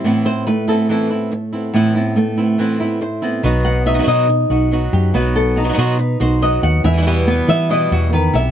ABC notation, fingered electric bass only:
X:1
M:4/4
L:1/8
Q:1/4=141
K:none
V:1 name="Fingered electric bass" clef=bass
z8 | z8 | B,,,3 B,,2 B,,,2 ^F,, | B,,,3 B,,2 B,,,2 ^D,, |
E,,3 E,2 E,,2 B,,, |]